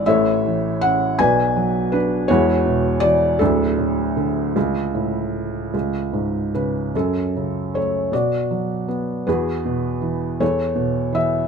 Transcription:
<<
  \new Staff \with { instrumentName = "Felt piano" } { \time 6/8 \key fis \minor \tempo 4. = 52 << { e''4 fis''8 gis''4 b'8 | cis''4 d''8 a'4.~ | a'2~ a'8 b'8 | a'4 cis''8 d''4 r8 |
b'4. cis''4 e''8 | } \\ { <a' cis''>4. <b' d''>4. | <e' fis'>4. <d' e'>4.~ | <d' e'>2~ <d' e'>8 r8 | cis'4. fis'4. |
<fis' gis'>4. a'4. | } >> }
  \new Staff \with { instrumentName = "Felt piano" } { \clef bass \time 6/8 \key fis \minor <a,, a,>8 e8 cis'8 <b,, b,>8 fis8 d'8 | <e,, e,>8 b,8 e8 <d,, d,>8 a,8 d8 | cis,8 a,4 cis,8 gis,8 cis8 | fis,8 cis8 a8 b,8 fis8 b8 |
e,8 b,8 e8 e,8 b,8 e8 | }
>>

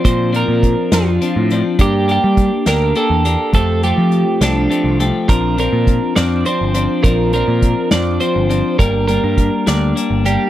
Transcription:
<<
  \new Staff \with { instrumentName = "Clean electric guitar" } { \time 6/8 \key bes \major \tempo 4. = 69 c''8 bes'4 f'4 r8 | g'8 g'4 bes'8 a'4 | a'8 g'4 d'4 r8 | bes'8 bes'4 d''8 c''4 |
bes'8 bes'4 d''8 c''4 | bes'8 bes'4 d''4 g'8 | }
  \new Staff \with { instrumentName = "Clean electric guitar" } { \time 6/8 \key bes \major <f c' d'>8 <f c' d'>4 <f c' d'>8 <f c' d'>8 <f c' d'>8 | <bes d' g'>8 <bes d' g'>4 <bes d' g'>8 <bes d' g'>8 <bes d' g'>8 | <f a c' g'>8 <f a c' g'>4 <f a c' g'>8 <f a c' g'>8 <f a c' g'>8 | <f c' d'>8 <f c' d'>4 <f c' d'>8 <f c' d'>8 <f c' d'>8 |
<f c' d'>8 <f c' d'>4 <f c' d'>8 <f c' d'>8 <f c' d'>8 | <g bes d'>8 <g bes d'>4 <g bes d'>8 <g bes d'>8 <g bes d'>8 | }
  \new Staff \with { instrumentName = "Picked electric bass" } { \clef bass \time 6/8 \key bes \major bes,8. bes,8 r16 f,8 r16 a,8 r16 | g,8. g8 r16 d,8 r16 e,8 r16 | f,8. f8 r16 c,8 r16 c,8 r16 | bes,,8. bes,8 r16 f,8 r16 g,,8 r16 |
bes,,8. bes,8 r16 f,8 r16 g,,8 r16 | g,,8. g,8 r16 d,8 r16 g,,8 r16 | }
  \new DrumStaff \with { instrumentName = "Drums" } \drummode { \time 6/8 <hh bd>8 hh8 <hh bd>8 <hh sn>8 hh8 hh8 | <hh bd>8 hh8 <hh bd>8 <hh sn>8 hh8 hh8 | <hh bd>8 hh8 hh8 <hh sn>8 hh8 hh8 | <hh bd>8 hh8 <hh bd>8 <hh sn>8 hh8 hh8 |
<hh bd>8 hh8 <hh bd>8 <hh sn>8 hh8 hh8 | <hh bd>8 hh8 <hh bd>8 <hh sn>8 hh8 hh8 | }
>>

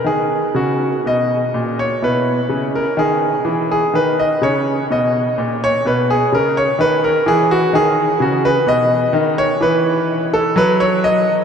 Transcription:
<<
  \new Staff \with { instrumentName = "Grand piano" } { \time 4/4 \key b \major \tempo 4 = 63 << { gis'8 fis'8 dis''8. cis''16 b'8. ais'16 gis'8. gis'16 | b'16 dis''16 cis''8 dis''8. cis''16 b'16 gis'16 ais'16 cis''16 b'16 ais'16 gis'16 fis'16 | \key b \mixolydian gis'8 fis'16 b'16 dis''8. cis''16 b'8. a'16 b'16 cis''16 dis''8 | } \\ { dis'2 e'2 | dis'1 | r1 | } >> }
  \new Staff \with { instrumentName = "Grand piano" } { \clef bass \time 4/4 \key b \major dis8 cis8 b,8 ais,8 b,8 cis8 dis8 e8 | dis8 cis8 b,8 ais,8 b,8 cis8 dis8 e8 | \key b \mixolydian dis8 cis8 b,8 dis8 e4 fis4 | }
>>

